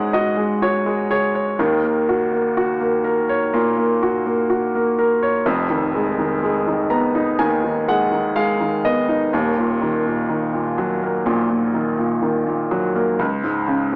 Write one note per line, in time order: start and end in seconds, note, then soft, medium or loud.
0.00 1.54 C#2 medium
0.00 1.54 G#2 medium
0.00 1.54 C#3 medium
0.00 0.37 G#3 medium
0.00 0.14 F#4 medium
0.00 1.05 G#4 medium
0.00 0.61 C#5 medium
0.00 1.59 F#5 medium
0.00 1.60 G#5 medium
0.13 0.61 F#4 medium
0.13 0.58 D#5 medium
0.37 0.85 G#3 soft
0.62 1.56 F#4 medium
0.62 1.07 C#5 medium
0.86 1.56 G#3 medium
1.10 1.57 G#4 medium
1.10 1.33 C#5 medium
1.35 1.58 C#5 medium
1.59 5.42 D#2 medium
1.59 5.42 D#3 medium
1.83 2.31 A#3 soft
2.09 2.56 F#4 medium
2.32 2.79 A#3 soft
2.57 4.01 F#4 medium
2.80 3.52 A#3 soft
3.04 4.93 A#4 medium
3.29 5.18 C#5 medium
3.53 5.42 A#2 medium
3.53 3.76 A#3 medium
3.78 4.24 A#3 medium
4.03 4.48 F#4 medium
4.26 4.74 A#3 soft
4.50 5.43 F#4 medium
4.75 5.44 A#3 medium
4.99 5.45 A#4 medium
5.23 5.45 C#5 medium
5.46 9.29 F1 medium
5.46 9.29 F2 medium
5.70 6.17 D#3 medium
5.95 6.41 G#3 medium
6.19 6.66 D#3 soft
6.43 7.87 G#3 soft
6.67 7.37 D#3 soft
6.90 8.80 B3 medium
6.90 7.35 A#5 medium
7.15 9.04 D#4 medium
7.39 9.28 D#2 medium
7.39 7.63 D#3 medium
7.39 7.84 G#5 medium
7.64 8.10 D#3 soft
7.88 8.35 G#3 soft
7.88 8.33 F#5 medium
8.11 8.59 D#3 soft
8.36 9.30 G#3 medium
8.36 8.81 F5 medium
8.60 9.30 D#3 soft
8.85 9.31 B3 soft
8.85 9.29 D#5 medium
9.09 9.32 D#4 medium
9.33 13.16 D#1 medium
9.33 13.16 D#2 medium
9.58 10.04 A#2 medium
9.81 10.28 D#3 soft
10.06 10.52 A#2 soft
10.29 11.73 D#3 soft
10.53 11.24 A#2 soft
10.78 12.67 F#3 medium
11.02 12.91 A#3 medium
11.26 13.16 A#1 medium
11.26 11.49 A#2 medium
11.50 11.97 A#2 medium
11.74 12.21 D#3 medium
11.98 12.45 A#2 soft
12.22 13.16 D#3 medium
12.47 13.17 A#2 medium
12.71 13.18 F#3 medium
12.95 13.19 A#3 medium
13.19 13.96 C#2 medium
13.43 13.91 G#2 medium
13.68 13.96 C#3 medium
13.92 13.96 G#2 soft